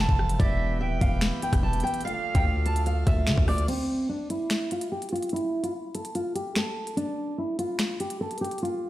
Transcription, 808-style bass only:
0.09 F1
0.40 E1
0.81 D1
0.91 E1
1.01 E1
1.53 E1
1.63 E1
2.35 D2
3.07 D2
3.27 D3
3.38 D2

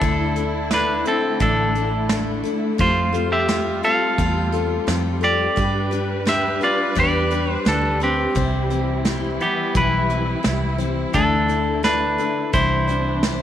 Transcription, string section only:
Already playing: E4
0.02 D3 A3
2.80 G3 F4
5.58 D4 B4
8.37 E3 E4
11.15 D3 A3
12.54 E3 C4 D4

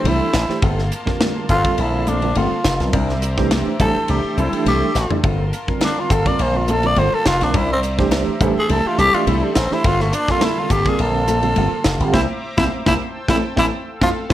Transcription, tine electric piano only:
Already playing: E3 A3 D4 G4 A4
0.48 E3 A3 D4 G4 C5
1.05 D3 G3 C4 F4 A#4
1.64 D3 G3 C4 F4 A4
2.22 D3 G3 C4 F4 A#4
2.80 D3 G3 C4 F4 A#4
3.37 E3 A3 D4 G4 C5
3.79 E3 A3 D4 G4 C5
4.52 E3 A3 D4 G4 A4
5.10 E3 A3 D4 G4 D5
5.67 D3 G3 C4 F4 A#4
6.26 D3 G3 C4 F4 A#4
6.83 D3 G3 C4 F4 A#4
7.40 D3 G3 C4 F4 A#4
7.98 E3 A3 D4 G4 C5
8.39 E3 A3 D4 G4 C5
9.13 E3 A3 D4 G4 D5
9.71 E3 A3 D4 G4 C5
10.28 D3 G3 C4 F4 A4
10.85 D3 G3 C4 F4 A#4
11.42 D3 G3 C4 F4 A4
12.00 D3 G3 C4 F4 G4
12.14 A#3 C4 E4
12.58 A#3 C4 E4
12.86 A#3 C4 E4
13.29 A3 C4 E4
13.56 A3 C4 E4
14.01 C4 E4 F4
14.30 C4 E4 F4

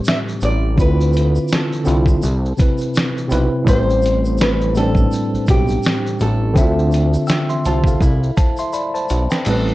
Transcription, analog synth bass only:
0.42 A1
0.78 D2
1.87 C2
2.23 C2
3.31 B1
3.67 A1
5.34 B1
5.49 B1
6.21 A1
6.56 D2
7.66 C2
8.01 C2
9.11 B1
9.46 A1

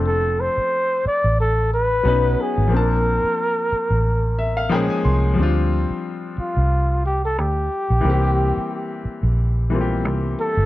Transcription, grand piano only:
Already playing: F3 A3 C4 D4 A4
2.03 F#3 B3 C#4 D#4
2.08 B4
2.68 F3 A#3
2.72 C4 D4
2.77 A5
4.39 E5
4.57 F5
4.69 F3 G#3 A#3 C#4 G5
4.74 G#4
4.90 G#5
5.05 C6
5.34 F3 G3
5.38 C4 D4
5.43 F4
8.01 E3 G3
8.05 A#3 C4
8.10 G4
9.70 E3 G3 A#3 C4
9.74 F4
9.81 G4

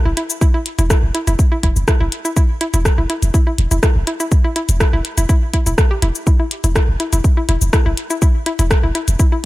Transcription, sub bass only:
0.05 E1
0.79 E1
1.03 E1
1.27 E1
1.63 E1
1.76 E1
2.01 E1
2.74 E1
2.98 E1
3.22 E1
3.58 E1
3.71 E1
3.96 E1
4.69 E1
4.93 E1
5.18 E1
5.66 D1
6.02 E1
6.64 E1
6.88 E1
7.13 E1
7.49 E1
7.61 E1
7.86 E1
8.59 E1
8.83 E1
9.08 E1

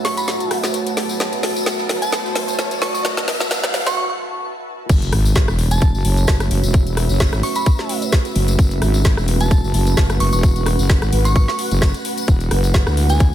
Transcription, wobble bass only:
4.89 F#1
5.13 G#1
5.48 E1
5.94 F#1
6.05 F#1
6.28 F#1
6.51 F#1
6.64 E1
7.10 F#1
7.33 G#1
8.36 F#1
8.59 F#1
8.82 G#1
9.18 E1
9.64 F#1
9.74 F#1
9.97 F#1
10.20 F#1
10.33 E1
10.79 F#1
11.02 G#1
11.13 G#1
11.71 F#1
12.28 E1
12.51 F#1
12.87 D2

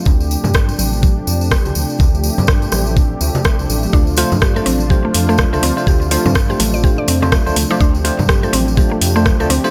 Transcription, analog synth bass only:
0.06 D2
0.45 G2
0.79 A1
1.27 F2
1.66 D2
1.76 D2
2.00 D2
2.38 G2
2.72 A1
3.21 D2
3.59 C2
3.69 A1
3.93 D2
4.32 G2
4.66 A1
5.15 F2
5.53 D2
5.63 D2
5.87 D2
6.26 G2
6.60 A1
7.08 F2
7.47 D2
7.56 D2
7.81 D2
8.19 G2
8.53 A1
9.01 F2
9.40 D2
9.50 D2

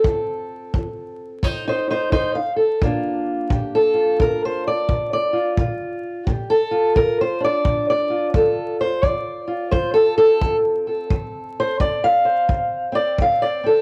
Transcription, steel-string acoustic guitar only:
Already playing: C4 F4 A4
0.05 F3
0.75 F3
1.43 F3 D#4 C5
1.68 D#4 C5
1.90 D#4 C5
2.11 F3 D#4 C5
2.35 F5
2.56 A4
2.82 A#2 A#3 D4 F4
3.51 A#2 G4
3.75 A4
3.94 F4
4.19 A#2 A#4
4.45 C5
4.67 D5
4.89 A#2
5.13 D5
5.33 F4
5.59 A#2 F4
6.26 A#2 G4
6.50 A4
6.71 F4
6.95 A#2 A#4
7.21 C5
7.40 D4
7.44 D5
7.65 A#2
7.90 D5
8.10 F4
8.34 F3 A4
8.81 C5
9.04 F3 D5
9.48 F4
9.71 F3 C5
9.94 A4
10.17 C4 A4
10.42 F3
10.87 A4
11.11 F3
11.60 C5
11.80 F3 D5
12.04 F5
12.25 C5
12.48 F3
12.92 C4 D5
13.18 F3 F5
13.42 D5
13.64 C4 A4

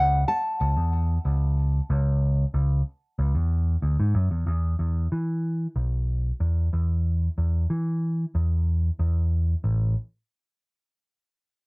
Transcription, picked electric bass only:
Already playing: C#2
0.61 C#2
0.77 E2
1.25 C#2
1.90 C#2
2.54 C#2
3.19 C#2
3.35 E2
3.82 D2
4.00 G#2
4.15 F#2
4.31 E2
4.47 E2
4.79 E2
5.12 E3
5.76 B1
6.40 E2
6.73 E2
7.38 E2
7.70 E3
8.35 E2
8.99 E2
9.64 A1

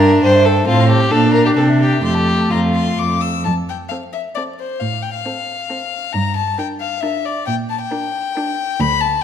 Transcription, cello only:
Already playing: G2
0.23 G2
0.67 A2
1.12 A#2
1.57 C3
2.04 F2
2.52 F2
2.99 F2
3.46 F2
4.81 A2
6.14 G2
7.47 A#2
8.80 D2

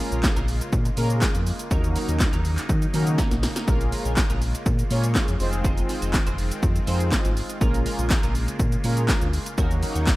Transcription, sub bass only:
0.12 A#1
0.36 A#1
0.73 A#2
0.97 A#2
1.35 F2
1.71 D#2
2.09 D#2
2.33 D#2
2.69 D#3
2.94 D#3
3.31 A#1
3.68 A#1
4.05 A#1
4.30 A#1
4.66 A#2
4.91 A#2
5.28 F2
5.40 F1
6.02 F1
6.27 F1
6.63 F2
6.87 F2
7.25 G#1
7.61 A#1
7.99 A#1
8.23 A#1
8.59 A#2
8.84 A#2
9.22 D2
9.58 D#2
9.95 D#2

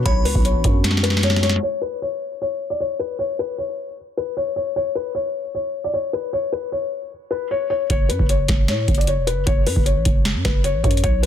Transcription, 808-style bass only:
0.06 B1
0.25 C#2
0.35 B1
0.55 A1
0.65 F#2
7.90 F#1
8.10 F#2
8.19 F#1
8.49 F#1
8.68 A2
8.88 F#1
9.18 E1
9.32 F#1
9.47 F#1
9.66 F#2
9.76 F#1
9.96 A1
10.06 F#1
10.35 F#2
10.45 F#1
10.74 A1
10.84 F#2
11.04 B1

